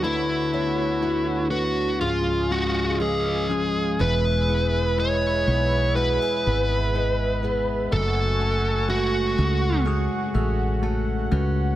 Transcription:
<<
  \new Staff \with { instrumentName = "Analog synth pad" } { \time 4/4 \key e \mixolydian \tempo 4 = 61 << { <d, cis''>2 <cis, eis''>2 | e''1 | gis''2 r2 | } \\ { <d a fis'>2 <cis gis gis'>2 | <gis' b' b''>1 | <fis' fis'' cis'''>1 | } >> }
  \new Staff \with { instrumentName = "Lead electric guitar" } { \time 4/4 \key e \mixolydian e'4. fis'8 eis'8 fis'8 gis'4 | b'4 cis''4 b'2 | a'4 fis'4 r2 | }
  \new Staff \with { instrumentName = "Tine electric piano" } { \time 4/4 \key e \mixolydian <a d' b'>8 <a d' cis''>8 <a d' e'>8 <a d' b'>8 <eis cis' gis'>8 <gis cis' eis''>8 <eis cis' b'>8 <eis cis' gis'>8 | <gis e' b'>8 <gis e' b'>8 <gis e' b'>8 <gis e' b'>8 <gis e' b'>8 <gis e' b'>8 <gis e' b'>8 <gis e' gis'>8 | <a fis' a'>8 <a fis' a'>8 <gis fis' b'>8 <gis fis' gis'>8 <gis fis' gis'>8 <fis' gis' a'>8 <a fis' a'>8 <gis fis' b'>8 | }
  \new Staff \with { instrumentName = "Tine electric piano" } { \clef bass \time 4/4 \key e \mixolydian <d, d>2 <cis, gis,>2 | b,4. r2 r8 | cis4. r4 e''16 fis''16 a''4 | }
  \new Staff \with { instrumentName = "Steel-string acoustic guitar" } { \time 4/4 \key e \mixolydian d8 b8 fis'8 b8 cis8 cis'8 gis8 eis'8 | <e, gis'>8 b8 gis8 b8 fis'16 gis'16 b8 gis8 b8 | fis,8 cis'8 a8 cis'8 gis'8 cis'8 a8 cis'8 | }
  \new Staff \with { instrumentName = "Fretless electric bass" } { \clef bass \time 4/4 \key e \mixolydian r1 | e,,4. b,,8. r16 gis,,4. | fis,,4. cis,8. r16 a,,4 cis,8 | }
>>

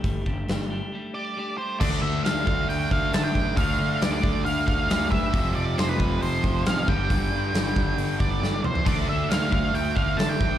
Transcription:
<<
  \new Staff \with { instrumentName = "Lead electric guitar" } { \time 4/4 \key d \minor \tempo 4 = 136 r2 r8 d''4 c''8 | d''8 e''8 f''8 f''8 g''8 f''8 a''16 g''8. | f''4 d''16 d''8. f''8 f''4 e''8~ | e''8 d''8 c''16 b'8. c''4 f''8 g''8~ |
g''2~ g''8 d''4 c''8 | d''8 e''8 f''8 f''8 g''8 f''8 a''16 g''8. | }
  \new Staff \with { instrumentName = "Clean electric guitar" } { \time 4/4 \key d \minor <g a d' g'>8 <a d' g'>8 <g a d' g'>8 <g a d' g'>8 <g a d' g'>8 <a d' g'>8 <g a d' g'>8 <a d' g'>8 | r1 | r1 | r1 |
r1 | r1 | }
  \new Staff \with { instrumentName = "Distorted electric guitar" } { \clef bass \time 4/4 \key d \minor r1 | <d a d'>1 | <d a d'>1 | <f, c f>2.~ <f, c f>8 <g, d g>8~ |
<g, d g>2.~ <g, d g>8 r8 | <d a d'>1 | }
  \new Staff \with { instrumentName = "Overdriven electric guitar" } { \clef bass \time 4/4 \key d \minor r1 | <d a d'>1 | <d a d'>1 | <f, c f>2.~ <f, c f>8 <g, d g>8~ |
<g, d g>2.~ <g, d g>8 r8 | <d a d'>1 | }
  \new Staff \with { instrumentName = "Picked electric bass" } { \clef bass \time 4/4 \key d \minor g,,8 g,,8 g,,4 r2 | d,8 d,8 d,4 d,8 d,8 d8 a,,8 | d,8 d8 d,8 d,8 d,8 d,8 d,8 g,8 | f,,8 f,,8 f,,4 f,,8 f,,8 a,,8 g,,8 |
g,,8 g,8 g,,8 g,,8 g,,8 g,,8 g,,8 e,8 | d,8 d,8 d,4 d,8 d,8 d8 a,,8 | }
  \new DrumStaff \with { instrumentName = "Drums" } \drummode { \time 4/4 <hho bd>8 bd8 <hho sn>4 r4 r4 | <cymc bd>4 <hho sn>8 bd8 hho8 bd8 <hho sn>8 bd8 | <hho bd>4 <hho sn>8 bd8 hho8 bd8 <hho sn>8 bd8 | <hho bd>4 <hho sn>8 bd8 hho8 bd8 <hho sn>8 bd8 |
<hho bd>4 <hho sn>8 bd8 hho8 bd8 sn8 toml16 tomfh16 | <cymc hho bd>4 <hho sn>8 bd8 hho8 bd8 <hho sn>8 bd8 | }
>>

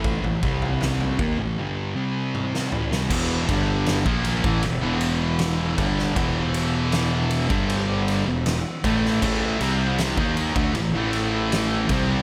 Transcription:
<<
  \new Staff \with { instrumentName = "Distorted electric guitar" } { \clef bass \time 4/4 \key e \minor \tempo 4 = 78 <a, e a>16 <a, e>16 <c g c'>4 <dis ais>16 <a, e>16 <g, d g>8 <c g c'>4 <a, e>16 <c g>16 | <e, b, e>8 <g, d g>8. <ais, f ais>8 <a, e>16 <e, b,>16 <e, b, e>4~ <e, b, e>16 <g, d g>8 | <e, b, e>4.~ <e, b, e>16 <g, d g>4 <e, b,>8 r16 <a, e a>8 | <a, e a>8 <c g c'>8. <dis ais dis'>8 <d a>16 <a, e>16 <a, e a>4~ <a, e a>16 <c g c'>8 | }
  \new Staff \with { instrumentName = "Distorted electric guitar" } { \clef bass \time 4/4 \key e \minor <a, e a>16 <a, e>16 <c g c'>4 <dis ais>16 <a, e>16 <g, d g>8 <c g c'>4 <a, e>16 <c g>16 | <e, b, e>8 <g, d g>8. <ais, f ais>8 <a, e>16 <e, b,>16 <e, b, e>4~ <e, b, e>16 <g, d g>8 | <e, b, e>4.~ <e, b, e>16 <g, d g>4 <e, b,>8 r16 <a, e a>8 | <a, e a>8 <c g c'>8. <dis ais dis'>8 <d a>16 <a, e>16 <a, e a>4~ <a, e a>16 <c g c'>8 | }
  \new Staff \with { instrumentName = "Distorted electric guitar" } { \clef bass \time 4/4 \key e \minor r1 | <e, b, e>8 <g, d g>8. <ais, f ais>8 <a, e>16 <e, b,>16 <e, b, e>4~ <e, b, e>16 <g, d g>8 | <e, b, e>4.~ <e, b, e>16 <g, d g>4 <e, b,>8 r16 <a, e a>8 | <a, e a>8 <c g c'>8. <dis ais dis'>8 <d a>16 <a, e>16 <a, e a>4~ <a, e a>16 <c g c'>8 | }
  \new Staff \with { instrumentName = "Fingered electric bass" } { \clef bass \time 4/4 \key e \minor a,,16 a,,16 c,4 dis,16 a,,16 r2 | e,,8 g,,8. ais,,8 a,,16 e,,16 e,,4~ e,,16 g,,8 | e,,4.~ e,,16 g,,4 e,,8 r16 a,,8 | a,,8 c,8. dis,8 d,16 a,,16 a,,4~ a,,16 c,8 | }
  \new DrumStaff \with { instrumentName = "Drums" } \drummode { \time 4/4 <bd tomfh>16 tomfh16 bd16 tomfh16 <sn tomfh>16 tomfh16 <bd tomfh>8 r4 tommh16 sn16 toml16 sn16 | <cymc bd>8 <bd cymr>8 <cymr sn>16 bd16 cymr16 bd16 cymr8 cymr8 <cymr sn>8 <bd cymr>16 sn16 | <bd cymr>8 cymr8 <cymr sn>8 cymr16 bd16 cymr8 cymr8 <cymr sn>8 <bd cymr>16 sn16 | <cymc bd>8 cymr8 <cymr sn>16 bd16 cymr16 bd16 cymr8 cymr8 <cymr sn>8 <bd cymr>8 | }
>>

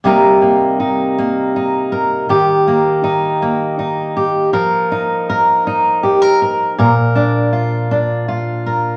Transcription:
\new Staff \with { instrumentName = "Steel-string acoustic guitar" } { \time 6/8 \key c \minor \tempo 4. = 53 << { <g bes ees' bes'>8 bes8 ees'8 bes8 ees'8 bes'8 | g'8 bes8 ees'8 bes8 ees'8 g'8 | bes'8 ees'8 bes'8 ees'8 g'16 bes'16 bes'8 | bes'8 d'8 f'8 d'8 f'8 bes'8 | } \\ { c2. | ees2. | f2. | bes,2. | } >> }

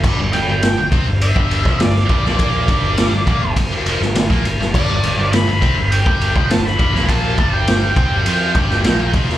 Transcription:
<<
  \new Staff \with { instrumentName = "Lead electric guitar" } { \time 4/4 \key c \lydian \tempo 4 = 102 r8 g''4 r8 e''4 d''4 | d''2 r2 | d''4 b''4 g''4 a''16 b''8. | a''8. g''8. g''2 r8 | }
  \new Staff \with { instrumentName = "Distorted electric guitar" } { \clef bass \time 4/4 \key c \lydian <g, g>16 g,16 g,16 g,16 g,16 g,16 <c c'>16 g,8 <g, g>8 <f, f>16 g,8 <g, g>16 <bes, bes>16~ | <bes, bes>8 <g, g>8. g,16 <bes, bes>16 g,16 g,16 r16 <f, f>16 g,16 g,16 <bes, bes>16 g,16 g,16 | <g, g>16 g,16 g,16 g,16 g,16 g,16 <c c'>16 g,8 <g, g>8 <f, f>16 g,8 <g, g>16 <bes, bes>16 | <bes, bes>8 <g, g>4 <c c'>16 <g, g>16 <f f'>8 <g, g>8 <bes, bes>8 <f, f>8 | }
  \new Staff \with { instrumentName = "Picked electric bass" } { \clef bass \time 4/4 \key c \lydian g,,16 g,,16 g,,16 g,,16 g,,16 g,,16 c,16 g,,8 g,,8 f,,16 g,,8 g,,16 bes,,16~ | bes,,8 g,,8. g,,16 bes,,16 g,,16 g,,16 r16 f,,16 g,,16 g,,16 bes,,16 g,,16 g,,16 | g,,16 g,,16 g,,16 g,,16 g,,16 g,,16 c,16 g,,8 g,,8 f,,16 g,,8 g,,16 bes,,16 | bes,,8 g,,4 c,16 g,,16 f,8 g,,8 bes,,8 f,,8 | }
  \new DrumStaff \with { instrumentName = "Drums" } \drummode { \time 4/4 <cymc bd>8 cymr8 <cymr sn>8 <bd cymr>8 cymr16 bd16 cymr16 <bd sn>16 <cymr sn>16 sn16 <bd cymr>16 sn16 | <bd cymr>8 <bd cymr>8 <cymr sn>8 <bd cymr>8 <bd cymr>8 cymr16 sn16 <cymr sn>16 <bd sn>16 cymr16 sn16 | <cymc bd>8 cymr8 <cymr sn>8 <bd cymr>8 cymr16 bd16 cymr16 bd16 <cymr sn>16 sn16 <bd cymr>16 sn16 | <bd cymr>8 <bd cymr>8 <cymr sn>8 <bd cymr>8 cymr8 <bd cymr>16 sn16 <cymr sn>8 <bd cymr>16 sn16 | }
>>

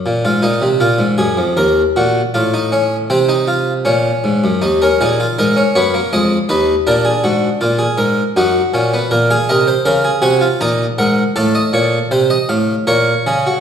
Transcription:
<<
  \new Staff \with { instrumentName = "Harpsichord" } { \time 3/4 \key ees \minor \tempo 4 = 80 << { r16 f'16 ees'8 f'8 aes'8 bes'8 ges'8 | f'16 ees'16 des'8 c'16 ees'16 f'8 des'4 | ees'16 des'16 ees'16 f'16 ees'16 des'16 ces'16 bes16 aes8 ees'8 | d'4 f'4 ees'8 des'16 ces'16 |
r16 f''16 ees''8 f''8 aes''8 bes''8 ges''8 | f''16 ees''16 des''8 r16 ees''16 f''8 des''4 | } \\ { r2. | r2. | r16 bes'16 aes'8 bes'8 des''8 ees''8 ces''8 | bes'16 aes'16 ges'8 r16 aes'16 bes'8 ges'4 |
bes'16 aes'16 bes'16 c''16 bes'16 aes'16 ges'16 f'16 ees'8 bes'8 | a'4 c''4 bes'8 aes'16 ges'16 | } >> }
  \new Staff \with { instrumentName = "Harpsichord" } { \clef bass \time 3/4 \key ees \minor bes,16 aes,16 bes,16 c16 bes,16 aes,16 ges,16 f,16 ees,8 bes,8 | a,4 c4 bes,8 aes,16 ges,16 | ees,8 bes,8 aes,8 ges,8 f,8 ees,8 | bes,8 aes,8 bes,8 aes,8 ges,8 bes,8 |
bes,8 c8 des8 c8 bes,8 aes,8 | a,8 bes,8 c8 a,8 bes,8 des8 | }
>>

